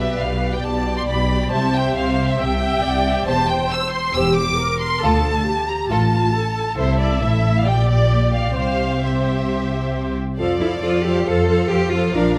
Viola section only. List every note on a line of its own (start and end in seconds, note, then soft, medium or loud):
0.00 0.62 B4 soft
0.63 1.50 D5 medium
1.51 2.40 C5 medium
2.40 2.84 E5 medium
2.83 3.27 D5 medium
3.27 4.15 C5 medium
4.15 4.57 G4 medium
4.58 5.01 A#4 medium
5.02 5.46 A4 soft
5.47 5.89 G4 medium
5.90 6.34 F4 soft
6.34 6.77 A4 soft
6.78 7.66 E5 medium
7.66 8.56 D5 medium
8.57 10.13 C5 soft
10.38 10.60 F3 soft
10.38 10.59 A4 soft
10.61 10.82 F3 soft
10.61 10.82 A4 soft
10.83 11.03 F3 soft
10.83 11.03 A4 soft
11.05 11.26 F3 soft
11.05 11.25 A4 soft
11.27 11.48 F3 soft
11.27 11.48 A4 soft
11.49 11.70 F3 soft
11.49 11.70 A4 soft
11.71 11.92 F3 soft
11.71 11.92 A4 soft
11.94 12.15 F3 soft
11.94 12.15 A4 soft
12.16 12.36 F3 soft
12.16 12.36 A#4 soft